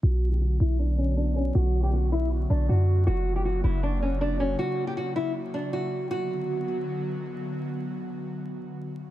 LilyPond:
<<
  \new Staff \with { instrumentName = "Nylon-string guitar" } { \time 4/4 \key b \minor \tempo 4 = 158 fis'8. g'16 fis'8 e'8 d'8 cis'8 d'8 cis'8 | fis'8. g'16 fis'8 e'8 r8 d'8 fis'4 | fis'8. g'16 fis'8 e'8 d'8 cis'8 d'8 cis'8 | fis'8. g'16 fis'8 e'8 r8 d'8 fis'4 |
fis'2. r4 | r1 | }
  \new Staff \with { instrumentName = "Analog synth pad" } { \clef bass \time 4/4 \key b \minor << { <fis fis'>1~ | <fis fis'>1~ | <fis fis'>1~ | <fis fis'>1 |
<d fis b fis'>1~ | <d fis b fis'>1 | } \\ { <d b>1~ | <d b>1 | <cis ais>1~ | <cis ais>1 |
r1 | r1 | } >> }
  \new Staff \with { instrumentName = "808-style bass" } { \clef bass \time 4/4 \key b \minor b,,4. b,,2~ b,,8 | b,,2~ b,,8 b,,8 fis,4 | fis,,4. fis,,2~ fis,,8 | r1 |
r1 | r1 | }
>>